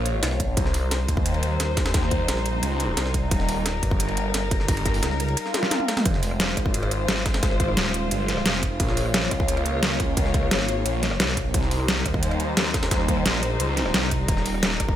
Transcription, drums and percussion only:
0.06 closed hi-hat, ride
0.23 snare, closed hi-hat, ride
0.31 snare
0.40 kick, closed hi-hat, ride
0.57 kick, closed hi-hat, ride
0.66 snare
0.74 closed hi-hat, open hi-hat
0.91 snare, closed hi-hat, ride
1.08 kick, closed hi-hat, ride
1.17 kick
1.26 closed hi-hat, ride
1.34 ride
1.43 closed hi-hat, ride
1.60 snare, closed hi-hat, ride
1.77 kick, snare, closed hi-hat, ride
1.86 snare, ride
1.94 kick, snare, closed hi-hat, ride
2.03 snare
2.11 kick, closed hi-hat, ride
2.28 snare, closed hi-hat, ride
2.37 snare
2.46 closed hi-hat, ride
2.63 closed hi-hat, ride
2.80 closed hi-hat, ride
2.97 snare, closed hi-hat, ride
3.06 snare
3.14 kick, closed hi-hat, ride
3.31 kick, closed hi-hat, ride
3.40 snare
3.49 closed hi-hat, open hi-hat
3.66 snare, closed hi-hat, ride
3.83 kick, closed hi-hat, ride
3.91 kick
4.00 closed hi-hat, ride
4.09 ride
4.17 closed hi-hat, ride
4.34 snare, closed hi-hat, ride
4.51 kick, closed hi-hat, ride
4.60 snare
4.68 kick, closed hi-hat, open hi-hat
4.77 ride
4.86 kick, snare, closed hi-hat
4.94 open hi-hat
5.03 snare, closed hi-hat, ride
5.11 snare
5.20 closed hi-hat, ride
5.28 ride
5.37 closed hi-hat, ride
5.46 snare
5.54 snare, closed hi-hat, high tom, ride
5.63 snare
5.71 snare, closed hi-hat, mid tom, ride
5.80 mid tom
5.88 snare, closed hi-hat, ride
5.97 snare, mid tom, ride
6.06 kick, closed hi-hat, ride
6.14 snare
6.23 closed hi-hat, open hi-hat
6.31 cross-stick
6.40 snare, closed hi-hat, ride
6.57 kick, cross-stick, closed hi-hat, ride
6.66 kick
6.74 closed hi-hat, ride
6.83 cross-stick, ride
6.91 closed hi-hat, ride
7.08 snare, closed hi-hat, ride
7.26 kick, snare, closed hi-hat, ride
7.34 snare, ride
7.43 kick, snare, closed hi-hat, ride
7.51 snare
7.60 kick, closed hi-hat, ride
7.68 cross-stick
7.77 snare, closed hi-hat, ride
7.86 snare
7.94 closed hi-hat, ride
8.11 closed hi-hat, ride
8.28 snare, closed hi-hat, ride
8.37 cross-stick
8.46 snare, closed hi-hat, ride
8.54 snare
8.63 kick, closed hi-hat, ride
8.80 kick, closed hi-hat, ride
8.89 snare
8.97 closed hi-hat, open hi-hat
9.06 cross-stick
9.14 snare, closed hi-hat, ride
9.31 kick, cross-stick, closed hi-hat, ride
9.40 kick
9.48 closed hi-hat, ride
9.57 cross-stick, ride
9.66 closed hi-hat, ride
9.83 snare, closed hi-hat, ride
10.00 kick, closed hi-hat, ride
10.17 kick, closed hi-hat, ride
10.26 snare
10.34 kick, closed hi-hat, ride
10.43 cross-stick
10.51 snare, closed hi-hat, ride
10.60 snare
10.68 closed hi-hat, ride
10.86 closed hi-hat, ride
11.03 snare, closed hi-hat, ride
11.11 cross-stick
11.20 snare, closed hi-hat, ride
11.28 snare
11.37 kick, closed hi-hat, ride
11.54 kick, closed hi-hat, ride
11.63 snare
11.71 closed hi-hat, open hi-hat
11.80 cross-stick
11.88 snare, closed hi-hat, ride
12.06 kick, cross-stick, closed hi-hat, ride
12.14 kick
12.23 closed hi-hat, ride
12.31 cross-stick, ride
12.40 closed hi-hat, ride
12.57 snare, closed hi-hat, ride
12.74 kick, snare, closed hi-hat, ride
12.83 snare, ride
12.91 kick, snare, closed hi-hat, ride
13.00 snare
13.08 kick, closed hi-hat, ride
13.17 cross-stick
13.26 snare, closed hi-hat, ride
13.34 snare
13.43 closed hi-hat, ride
13.60 closed hi-hat, ride
13.77 snare, closed hi-hat, ride
13.86 cross-stick
13.94 snare, closed hi-hat, ride
14.03 snare
14.11 kick, closed hi-hat, ride
14.28 kick, closed hi-hat, ride
14.37 snare
14.46 closed hi-hat, open hi-hat
14.54 cross-stick
14.63 snare, closed hi-hat, ride
14.80 kick, cross-stick, closed hi-hat, ride
14.89 kick

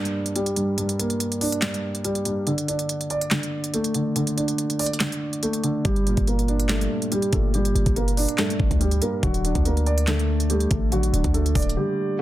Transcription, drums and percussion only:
0.05 closed hi-hat
0.26 closed hi-hat
0.36 closed hi-hat
0.46 closed hi-hat
0.56 closed hi-hat
0.78 closed hi-hat
0.89 closed hi-hat
1.00 closed hi-hat
1.10 closed hi-hat
1.20 closed hi-hat
1.32 closed hi-hat
1.41 closed hi-hat, open hi-hat
1.52 closed hi-hat
1.62 snare, clap, closed hi-hat
1.74 closed hi-hat
1.95 closed hi-hat
2.05 closed hi-hat
2.15 closed hi-hat
2.25 closed hi-hat
2.47 closed hi-hat
2.58 closed hi-hat
2.68 closed hi-hat
2.79 closed hi-hat
2.89 closed hi-hat
3.01 closed hi-hat
3.10 closed hi-hat
3.21 closed hi-hat
3.31 snare, clap, closed hi-hat
3.43 closed hi-hat
3.64 closed hi-hat
3.74 closed hi-hat
3.84 closed hi-hat
3.94 closed hi-hat
4.16 closed hi-hat
4.27 closed hi-hat
4.38 closed hi-hat
4.48 closed hi-hat
4.58 closed hi-hat
4.70 closed hi-hat
4.79 closed hi-hat, open hi-hat
4.86 closed hi-hat
4.93 closed hi-hat
5.00 snare, clap, closed hi-hat
5.12 closed hi-hat
5.33 closed hi-hat
5.43 closed hi-hat
5.53 closed hi-hat
5.64 closed hi-hat
5.85 kick, closed hi-hat
5.96 closed hi-hat
6.07 closed hi-hat
6.17 kick, closed hi-hat
6.27 closed hi-hat
6.39 closed hi-hat
6.48 closed hi-hat
6.60 closed hi-hat
6.69 snare, clap, closed hi-hat
6.81 closed hi-hat
7.02 closed hi-hat
7.12 closed hi-hat
7.22 closed hi-hat
7.33 kick, closed hi-hat
7.54 closed hi-hat
7.65 closed hi-hat
7.76 closed hi-hat
7.86 kick, closed hi-hat
7.96 closed hi-hat
8.08 closed hi-hat
8.17 closed hi-hat, open hi-hat
8.29 closed hi-hat
8.38 snare, clap, closed hi-hat
8.50 closed hi-hat
8.60 kick
8.71 kick, closed hi-hat
8.81 closed hi-hat
8.91 closed hi-hat
9.02 closed hi-hat
9.23 kick, closed hi-hat
9.34 closed hi-hat
9.45 closed hi-hat
9.55 kick, closed hi-hat
9.65 closed hi-hat
9.77 closed hi-hat
9.86 closed hi-hat
9.98 closed hi-hat
10.07 snare, clap, closed hi-hat
10.19 closed hi-hat
10.40 closed hi-hat
10.50 closed hi-hat
10.60 closed hi-hat
10.71 kick, closed hi-hat
10.92 closed hi-hat
11.03 closed hi-hat
11.14 closed hi-hat
11.24 kick, closed hi-hat
11.34 closed hi-hat
11.46 closed hi-hat
11.55 kick, closed hi-hat, open hi-hat
11.62 closed hi-hat
11.69 closed hi-hat

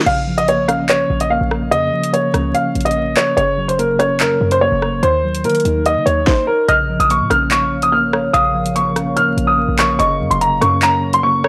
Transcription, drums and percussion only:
0.06 crash
0.38 closed hi-hat
0.48 closed hi-hat
0.69 cross-stick, closed hi-hat
0.89 clap, closed hi-hat
1.20 closed hi-hat
1.51 cross-stick
1.72 closed hi-hat
2.04 closed hi-hat
2.14 closed hi-hat
2.34 cross-stick, closed hi-hat
2.55 closed hi-hat
2.75 closed hi-hat
2.81 closed hi-hat
2.86 closed hi-hat
2.91 closed hi-hat
3.17 cross-stick, clap, closed hi-hat
3.37 closed hi-hat
3.69 closed hi-hat
3.79 closed hi-hat
4.00 cross-stick, closed hi-hat
4.20 clap, closed hi-hat
4.51 closed hi-hat
4.82 cross-stick
5.03 closed hi-hat
5.35 closed hi-hat
5.44 closed hi-hat
5.50 closed hi-hat
5.55 closed hi-hat
5.60 closed hi-hat
5.65 closed hi-hat
5.86 closed hi-hat
6.07 closed hi-hat
6.27 kick, snare
6.69 closed hi-hat
7.00 closed hi-hat
7.10 closed hi-hat
7.31 cross-stick, closed hi-hat
7.51 clap, closed hi-hat
7.82 closed hi-hat
8.13 cross-stick
8.34 closed hi-hat
8.66 closed hi-hat
8.76 closed hi-hat
8.96 cross-stick, closed hi-hat
9.17 closed hi-hat
9.38 closed hi-hat
9.79 cross-stick, clap, closed hi-hat
9.99 closed hi-hat
10.31 closed hi-hat
10.41 closed hi-hat
10.62 cross-stick, closed hi-hat
10.82 clap, closed hi-hat
11.13 closed hi-hat
11.44 cross-stick

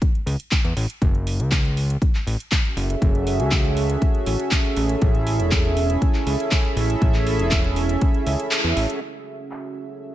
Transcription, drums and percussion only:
0.02 kick, closed hi-hat
0.15 closed hi-hat
0.27 open hi-hat
0.40 closed hi-hat
0.51 kick, clap, closed hi-hat
0.65 closed hi-hat
0.77 open hi-hat
0.90 closed hi-hat
1.02 kick, closed hi-hat
1.15 closed hi-hat
1.27 open hi-hat
1.40 closed hi-hat
1.52 kick, clap, closed hi-hat
1.65 closed hi-hat
1.77 open hi-hat
1.90 closed hi-hat
2.02 kick, closed hi-hat
2.15 clap, closed hi-hat
2.27 open hi-hat
2.40 closed hi-hat
2.52 kick, clap, closed hi-hat
2.65 closed hi-hat
2.77 open hi-hat
2.90 closed hi-hat
3.02 kick, closed hi-hat
3.15 closed hi-hat
3.27 open hi-hat
3.40 closed hi-hat
3.51 kick, clap, closed hi-hat
3.65 closed hi-hat
3.77 open hi-hat
3.90 closed hi-hat
4.02 kick, closed hi-hat
4.15 closed hi-hat
4.26 open hi-hat
4.40 closed hi-hat
4.51 kick, clap, closed hi-hat
4.65 closed hi-hat
4.76 open hi-hat
4.89 closed hi-hat
5.02 kick, closed hi-hat
5.15 closed hi-hat
5.27 open hi-hat
5.40 closed hi-hat
5.51 kick, clap, closed hi-hat
5.65 closed hi-hat
5.77 open hi-hat
5.90 closed hi-hat
6.02 kick, closed hi-hat
6.14 clap, closed hi-hat
6.27 open hi-hat
6.40 closed hi-hat
6.51 kick, clap, closed hi-hat
6.65 closed hi-hat
6.77 open hi-hat
6.90 closed hi-hat
7.02 kick, closed hi-hat
7.14 clap, closed hi-hat
7.27 open hi-hat
7.39 closed hi-hat
7.51 kick, clap, closed hi-hat
7.64 closed hi-hat
7.76 open hi-hat
7.89 closed hi-hat
8.01 kick, closed hi-hat
8.14 closed hi-hat
8.27 open hi-hat
8.40 closed hi-hat
8.51 clap, closed hi-hat
8.65 closed hi-hat
8.77 open hi-hat
8.90 closed hi-hat
9.51 clap

